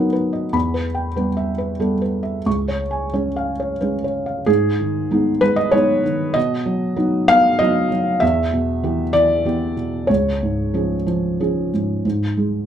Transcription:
Already playing: B2 F#3 B3 D#4 A#4 B4 D#5 F#5 B5
0.13 B4
0.33 D#5
0.53 E2 B5
0.74 B4
0.95 G5
1.16 G3 B3 B4
1.37 E5
1.58 B4
1.80 G3 B3 A4
2.02 B4
2.23 E5
2.46 C#2 C#6
2.68 C#5
2.91 G#5
3.13 G#3 C#4 C#5
3.36 F5
3.60 C#5
3.81 G#3 C#4 B4
4.04 C#5
4.26 F5
4.46 G#2 G#4
4.80 D#3
5.11 G#3 B3 D#4
5.41 G#3 B4
5.56 D#5
5.71 G#3 B3 D#4 C#5
6.03 D#3
6.34 B2 D#5
6.66 F#3
6.96 F#3 B3 D#4
7.28 B3 F5
7.59 F#3 B3 D#4 D#5
7.91 F#3
8.20 E2 E5
8.53 B2
8.83 E3 B3 G4
9.13 E3 D5
9.45 E3 B3 G4
9.76 B2
10.07 C#2 C#5
10.42 G#2
10.74 F3 C#4 G#4
11.07 F3
11.40 F3 C#4 G#4
11.73 G#2
12.05 G#2
12.37 G#3

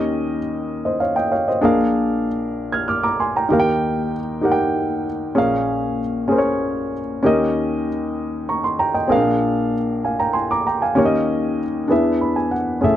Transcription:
Already playing: D#2 D#3 C#4 G4 A#4 D#5
0.85 C5 D#5
1.00 C#5 F5
1.16 D#5 G5
1.32 C#5 F5
1.48 C5 D#5
1.61 A#1 A#2 D4 G#4 A#4 F5
2.73 F6 G#6
2.88 D6 F6
3.03 A#5 D6
3.20 G#5 C6
3.36 G5 A#5
3.49 D#2 D#3 D#4 G4 A#4
3.53 F5
3.60 G5
4.41 D#4 G4 A#4 F#5
4.52 G5
5.35 A#1 A#2 C#4 G#4 A#4 F5
6.28 C#4 G#4 A#4 C5
6.38 C#5
7.23 D#2 D#3 C#4 G4 A#4 D#5
8.49 A#5 C#6
8.64 C6
8.79 G5 A#5
8.94 D#5 G5
9.08 A#1 A#2 C4 G#4 A#4
9.12 D4 F5
10.04 F5 G#5
10.20 G5 A#5
10.33 G#5 C6
10.51 A#5 D6
10.67 G5 A#5
10.82 F5 G#5
10.95 D#2 D#3 C#4 G4 A#4 C#5
11.05 D#5
11.88 E2 E3 D4 G#4 B4 E5
12.21 B5
12.36 G#5
12.51 F#5
12.81 A1 A2 C#4 G#4 A4 E5

